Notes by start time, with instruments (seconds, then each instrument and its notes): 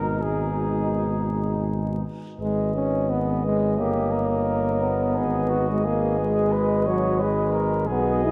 Already playing: tuba G#1, trombone B2, french horn G#3, flugelhorn D#4, trumpet A#4
0.22 trombone B2, french horn G#3, flugelhorn D#4, trumpet G#4
2.39 tuba G#1, trombone G#3, french horn B4, trumpet D#5
2.75 trombone C#4
3.10 trombone B3
3.46 trombone G#3
3.77 tuba G1, trombone A#3, flugelhorn G4, french horn C#5
4.11 flugelhorn A#4
4.82 trombone B3
5.15 tuba G#1, flugelhorn G#4, french horn B4
5.49 flugelhorn F#4
5.70 trombone G#3
5.84 trombone A#3, flugelhorn G#4
6.20 trombone G#3
6.52 flugelhorn B4
6.86 trombone F#3, flugelhorn C#5
7.20 trombone G#3, flugelhorn B4
7.52 flugelhorn A#4
7.87 tuba B1, trombone B3, french horn F#4, flugelhorn G#4, trumpet D#5
8.24 trombone E4